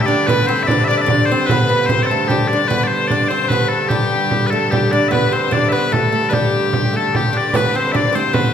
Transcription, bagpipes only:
0.01 E5
0.06 D5
0.27 B4
0.47 C5
0.63 D5 E5
0.84 D5 E5
0.97 D5 E5
1.26 C5
1.46 B4
1.86 C5
2.03 A4 D5
2.28 G4
2.48 D5
2.68 B4
2.84 C5 D5
3.08 D5
3.28 C5
3.48 B4
3.69 A4
3.88 G4
4.47 A4 B4
4.71 G4
4.92 D5
5.08 B4 E5
5.33 C5
5.53 D5
5.69 B4 E5
5.93 A4
6.30 G4 B4
6.96 A4
7.16 G4
7.37 D5
7.56 B4
7.76 C5
7.92 D5 E5
8.15 C5
8.34 B4

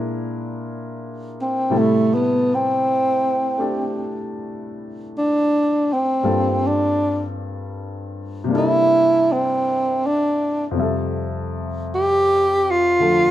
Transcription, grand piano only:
Already playing: A#2 G#3 D4 E4 A#4
1.70 A2 C3 G3 E4 A4
3.57 A3 D4 G4 A4
6.23 G2 G3 A#3 C4 F4 A4
8.44 C3 G3
8.48 A#3 D4
8.53 E4 A4
10.71 F2 C3
10.77 G3 E5
10.82 A4
13.00 D3 F3 A3 A4

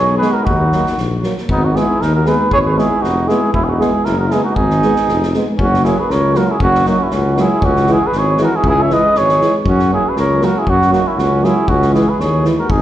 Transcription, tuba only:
Already playing: B1
0.47 D#2
0.98 A#1
1.49 G#1
2.02 D#2
2.53 G#1
3.03 F1
3.55 E1
4.06 F#1
4.58 G#1
5.08 F1
5.59 F#1
6.10 C#2
6.59 F#1
7.13 C#2
7.63 C#2
8.14 G#1
8.64 C#2
9.14 G#1
9.64 F#2
10.16 C#2
10.67 F#2
11.17 C#2
11.68 C#2
12.19 D#2
12.70 G#1

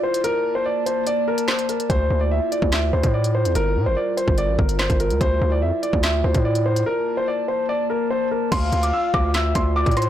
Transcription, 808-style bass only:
1.90 D2
2.10 D2
2.62 D2
2.93 D2
3.04 A2
3.45 E2
3.55 G1
3.76 A#2
3.86 G1
4.28 G1
4.48 A1
4.59 G1
4.90 G1
5.10 D2
5.21 D2
5.41 D2
5.62 F2
5.93 D2
6.24 D2
6.35 A2
8.52 D2
8.72 D2
9.14 D2
9.55 D2
9.86 A2

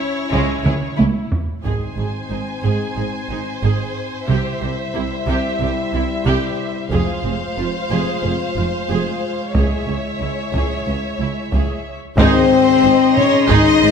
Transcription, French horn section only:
Already playing: C#4
1.64 C4 D#4
4.28 G3 E4
6.91 G#3 F4
9.55 E4
12.19 C4
13.16 C#4
13.50 D#4

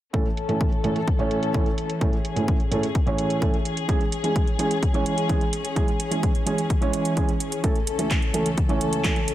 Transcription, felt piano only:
0.13 A2 E3 A3 C#4 A4
0.48 A2 E3 A3 C#4 A4
0.84 A2 E3 A3 C#4 A4
1.19 A2 E3 A3 C#4 C#5
1.54 A2 E3 A3 C#4 A4
2.01 A2 E3 A3 C#4 A4
2.36 A2 E3 A3 C#4 A4
2.71 A2 E3 A3 C#4 A4
3.06 A2 E3 A3 C#4 C#5
3.41 A2 E3 A3 C#4 A4
3.88 E3 G#3 C#4 G#4
4.23 E3 G#3 C#4 G#4
4.59 E3 G#3 C#4 G#4
4.94 E3 G#3 C#4 C#5
5.29 E3 G#3 C#4 G#4
5.76 E3 G#3 C#4 G#4
6.11 E3 G#3 C#4 G#4
6.46 E3 G#3 C#4 G#4
6.81 E3 G#3 C#4 C#5
7.16 E3 G#3 C#4 G#4
7.63 E3 A3 C#4 A4
7.98 E3 A3 C#4 A4
8.34 E3 A3 C#4 A4
8.69 E3 A3 C#4 C#5
9.04 E3 A3 C#4 A4

